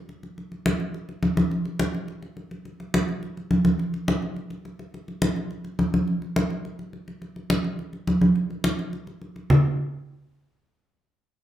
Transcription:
0.09 high conga
0.23 high conga
0.38 high conga
0.52 high conga
0.66 high conga
0.80 high conga
0.94 high conga
1.09 high conga
1.23 high conga
1.37 high conga
1.51 high conga
1.65 high conga
1.79 high conga
1.94 high conga
2.08 high conga
2.23 high conga
2.37 high conga
2.51 high conga
2.65 high conga
2.80 high conga
2.94 high conga
3.09 high conga
3.23 high conga
3.37 high conga
3.51 high conga
3.65 high conga
3.79 high conga
3.94 high conga
4.08 high conga
4.22 high conga
4.36 high conga
4.50 high conga
4.65 high conga
4.79 high conga
4.94 high conga
5.08 high conga
5.22 high conga
5.36 high conga
5.51 high conga
5.65 high conga
5.79 high conga
5.94 high conga
6.08 high conga
6.22 high conga
6.36 high conga
6.50 high conga
6.65 high conga
6.79 high conga
6.93 high conga
7.08 high conga
7.22 high conga
7.36 high conga
7.50 high conga
7.64 high conga
7.79 high conga
7.93 high conga
8.07 high conga
8.21 high conga
8.36 high conga
8.50 high conga
8.64 high conga
8.79 high conga
8.93 high conga
9.07 high conga
9.22 high conga
9.36 high conga
9.50 low conga

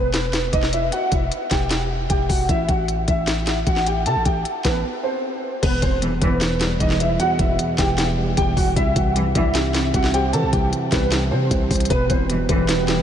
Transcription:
Already playing: E1 B3 B4
0.14 snare, closed hi-hat
0.33 snare, closed hi-hat
0.53 E1 D#4 D#5, kick, closed hi-hat
0.63 snare
0.73 E4 E5, closed hi-hat
0.92 F#4 F#5, closed hi-hat
1.12 E1 E4 E5, kick, closed hi-hat
1.32 closed hi-hat
1.51 E1 G4 G5, kick, snare, closed hi-hat
1.71 snare, closed hi-hat
2.10 E1 G4 G5, kick, closed hi-hat
2.29 E1 F#4 F#5, kick, open hi-hat
2.49 A1 E4 E5, kick, closed hi-hat
2.69 A1 F#4 F#5, kick, closed hi-hat
2.88 closed hi-hat
3.08 A1 E4 E5, kick, closed hi-hat
3.27 snare, closed hi-hat
3.47 snare, closed hi-hat
3.67 A1 F#4 F#5, kick, closed hi-hat
3.76 snare
3.86 G4 G5, closed hi-hat
4.06 C3 A4 A5, closed hi-hat
4.16 A1
4.25 A1 G4 G5, kick, closed hi-hat
4.45 closed hi-hat
4.65 A1 B3 B4, kick, snare, closed hi-hat
5.03 C4 C5
5.63 E1 E2 B3 B4, kick, closed hi-hat, crash
5.82 E1 B2 C4 C5, kick, closed hi-hat
6.02 B1 E2 G2 E3, closed hi-hat
6.22 E1 B1 G2 E3 B3 B4, kick, closed hi-hat
6.41 E2, snare, closed hi-hat
6.61 G3, snare, closed hi-hat
6.80 E1 E2 D#4 D#5, kick, closed hi-hat
6.90 snare
7.00 B3 E4 E5, closed hi-hat
7.20 E2 F#4 F#5, closed hi-hat
7.39 E1 B2 E4 E5, kick, closed hi-hat
7.59 E2, closed hi-hat
7.78 E1 E3 G4 G5, kick, snare, closed hi-hat
7.98 E2, snare, closed hi-hat
8.18 G3
8.37 E1 E2 G4 G5, kick, closed hi-hat
8.56 E1 B3 F#4 F#5, kick, open hi-hat
8.76 C2 C3 E4 E5, kick, closed hi-hat
8.96 C2 E3 F#4 F#5, kick, closed hi-hat
9.16 C2 G2 C3 E3, closed hi-hat
9.35 C2 G2 E3 G3 E4 E5, kick, closed hi-hat
9.55 C3, snare, closed hi-hat
9.74 C4, snare, closed hi-hat
9.94 C2 C3 F#4 F#5, kick, closed hi-hat
10.04 snare
10.14 G4 C5 G5, closed hi-hat
10.33 C3 E3 A4 A5, closed hi-hat
10.43 C2
10.53 C2 E3 G4 G5, kick, closed hi-hat
10.73 C3, closed hi-hat
10.92 C2 G3 B3 B4, kick, snare, closed hi-hat
11.12 C3, snare, closed hi-hat
11.31 C3 C4 C5
11.51 C2 C3, kick, closed hi-hat
11.71 C2 C5, kick, closed hi-hat, open hi-hat
11.76 closed hi-hat
11.80 closed hi-hat
11.85 closed hi-hat
11.90 E1 B2 E3 B3 G4 B4, kick, closed hi-hat
12.10 E1 E3 C4 C5, kick, closed hi-hat
12.29 B1 G2 B2 E3, closed hi-hat
12.49 E1 B1 G2 E3 G3 B3 B4, kick, closed hi-hat
12.69 B2, snare, closed hi-hat
12.88 B3, snare, closed hi-hat

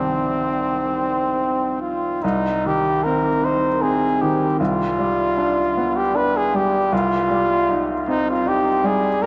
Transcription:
Already playing: C2 D#3 G3 C4
1.81 F4
2.23 C2 D#4
2.66 D#3 G4
3.04 C4 A#4
3.45 D#4 C5
3.82 C4 G#4
4.22 D#3 G4
4.60 C2 F4
4.99 G3
5.37 D4
5.77 B3
5.97 G4
6.14 D4 B4
6.37 G#4
6.54 G3 G4
6.92 C2 F4
7.30 G3
7.69 D#4
8.08 C4 D#4
8.30 F4
8.46 D#4 G4
8.84 G3 G#4
9.22 A#4

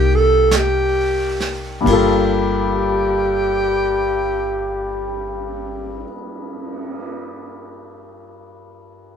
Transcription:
Already playing: C2 A#3 D4 D#4 G4
0.15 A4
0.51 brush sweep, snare, hi-hat pedal
0.56 G4
1.40 snare
1.81 G2 G3
1.86 G1 A#3 G4, kick, ride
1.90 F4 A4
2.81 cymbal swell

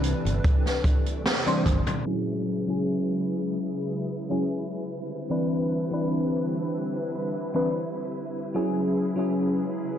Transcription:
Already playing: C2 C3 E3 G3 C4 D4 B4
0.03 A3, closed hi-hat
0.25 G1, closed hi-hat
0.44 kick, closed hi-hat
0.66 snare, closed hi-hat
0.84 kick, closed hi-hat
1.06 closed hi-hat
1.26 snare, closed hi-hat
1.46 E3 C4 D4 C5, closed hi-hat, high tom
1.66 G1, kick, closed hi-hat, mid tom
1.87 closed hi-hat, mid tom
2.06 C#3 F#3 G#3 C#4 E4 G#4 B4, crash
2.67 F#3 C#4 E4 G#4
4.30 F#3 C#4 E4 G#4
4.90 D3 G3 C4
5.30 E3 C4 D4 B4
5.91 E3 C4 D4 B4
7.54 E3 C4 D4 B4
8.54 C#3 F#3 G#3 C#4 E4 G#4
9.16 F#3 C#4 E4 G#4

